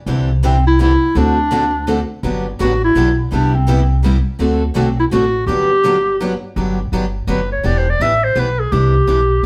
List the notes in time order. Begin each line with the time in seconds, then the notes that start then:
0.06 C2 C3 D3 E3 G3 C4 D4 E4 G4 C5
0.43 C3 D3 E3 G3 C4 D4 E4 G4 C5
0.67 E4
0.79 C3 D3 E3 G3 C4 D4 E4 G4 C5
1.15 D2 D3 A3 C4 D4 F#4 A4
1.51 D3 A3 C4 F#4 A4
1.87 D3 A3 C4 F#4 A4
2.23 G1 D3 F#3 B3 D4 G4
2.59 A1 D3 F#3 B3 D4 F#4 G4
2.84 E4
2.95 B1 D3 F#3 B3 D4 G4
3.32 C2 C3 G3 B3 D4 E4 G4
3.54 C4
3.68 C3 G3 B3 E4 G4
4.04 C3 G3 B3 E4 G4
4.39 D2 D3 A3 C4 F#4 A4
4.76 B1 D3 A3 C4 F#4 A4
5.00 E4
5.12 A1 D3 A3 C4 F#4 A4
5.46 G1 D3 F#3 B3 D4 G4
5.84 D3 F#3 B3 D4 G4
6.21 D3 F#3 B3 D4 G4
6.56 G1 D3 F#3 B3 D4 G4
6.92 G1 D3 F#3 B3 D4 G4
7.27 F#1 D3 F#3 B3 D4 G4 B4
7.52 C#5
7.63 E1 E3 B3 D4 G4 D5
7.78 C5
7.90 D5
8.00 A1 E3 B3 D4 G4 E5
8.24 C5
8.35 B1 E3 B3 D4 G4 B4
8.60 G#4
8.72 C2 C3 E3 D4 G4
9.07 B1 C3 E3 D4 G4